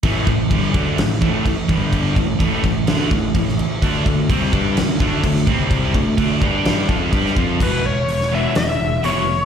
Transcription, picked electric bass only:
\new Staff \with { instrumentName = "Picked electric bass" } { \clef bass \time 4/4 \key e \dorian \tempo 4 = 127 a,,8 a,,8 g,,8 d,8 a,,8 a,,8 a,,8 g,,8~ | g,,8 a,,8 a,,8 a,,8 d,8 a,,8 a,,8 r8 | d,8 d,8 c,8 g,8 d,8 d,8 d,8 c,8~ | c,8 d,8 d,8 g,4 f,8 g,8 f,8 |
e,,8 e,,8 e,,4 e,,8 e,,8 f,,4 | }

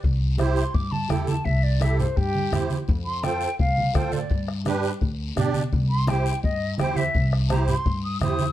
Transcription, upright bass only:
\new Staff \with { instrumentName = "Upright bass" } { \clef bass \time 4/4 \key c \major \tempo 4 = 169 c,2 g,4 e,4 | c,2 g,4 e,4 | f,2 c,4 a,4 | g,2 d,4 b,4 |
c,2 g,4 e,4 | c,2 g,4 e,4 | }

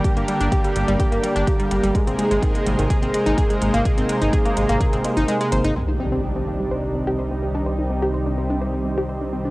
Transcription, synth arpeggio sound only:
\new Staff \with { instrumentName = "Synth arpeggio sound" } { \time 4/4 \key c \minor \tempo 4 = 126 g'16 bes16 g16 d'16 g'16 g16 g16 g16 g'16 bes16 g16 d'16 g'16 g16 g16 g16 | aes16 c'16 aes16 aes16 ees16 aes16 g16 ees16 aes'16 c'16 aes16 ees'16 aes'16 aes16 aes16 bes16 | aes'16 c'16 aes16 ees'16 aes'16 bes16 aes16 bes16 aes'16 c'16 aes16 ees'16 aes16 aes16 c''16 ees'16 | c'16 ees'16 c'16 c'16 g16 c'16 bes16 g16 c''16 ees'16 c'16 g'16 c''16 c'16 c'16 d'16 |
c''16 ees'16 c'16 g'16 c''16 d'16 c'16 d'16 c''16 ees'16 c'16 g'16 c''16 d'16 c'16 d'16 | }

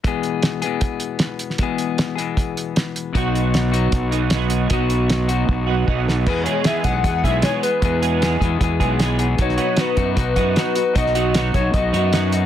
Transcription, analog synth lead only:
\new Staff \with { instrumentName = "Analog synth lead" } { \time 4/4 \key e \major \tempo 4 = 154 r1 | r1 | r1 | r1 |
b'8 cis''8 e''8 fis''8 fis''8 e''8 cis''8 b'8~ | b'4. r2 r8 | cis''4 b'4 b'2 | dis''4 r8 cis''8 dis''4 r4 | }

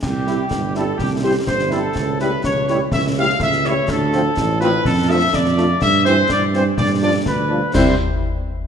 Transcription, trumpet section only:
\new Staff \with { instrumentName = "Trumpet section" } { \time 2/4 \key c \major \tempo 4 = 124 g'4. a'8 | g'8 c''8 c''8 a'8~ | a'8 b'8 cis''8 cis''8 | e''8 f''8 e''8 cis''8 |
a'4. b'8 | a'8 e''8 d''4 | e''8 c''8 d''8 c''8 | d''8 d''8 b'4 |
c''8 r4. | }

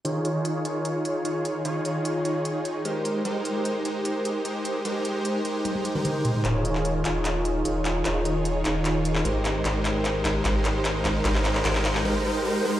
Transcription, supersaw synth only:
\new Staff \with { instrumentName = "Supersaw synth" } { \time 4/4 \key ees \mixolydian \tempo 4 = 150 <ees ees' f' aes' des''>4. <ees ees' f' aes' des''>4. <ees ees' f' aes' des''>4 | <ees ees' f' aes' des''>4. <ees ees' f' aes' des''>4. <aes ees' g' bes' c''>4 | <aes ees' g' bes' c''>4. <aes ees' g' bes' c''>4. <aes ees' g' bes' c''>4 | <aes ees' g' bes' c''>4. <aes ees' g' bes' c''>4~ <aes ees' g' bes' c''>16 <aes ees' g' bes' c''>4~ <aes ees' g' bes' c''>16 |
<ees ees' f' aes' des''>4. <ees ees' f' aes' des''>4. <ees ees' f' aes' des''>4 | <ees ees' f' aes' des''>4. <ees ees' f' aes' des''>4. <aes ees' g' bes' c''>4 | <aes ees' g' bes' c''>4. <aes ees' g' bes' c''>8 <aes ees' g' bes' c''>4. <aes ees' g' bes' c''>8 | <aes ees' g' bes' c''>4 <aes ees' g' bes' c''>4 <aes ees' g' bes' c''>8 <aes ees' g' bes' c''>8 <aes ees' g' bes' c''>8 <aes ees' g' bes' c''>8 | }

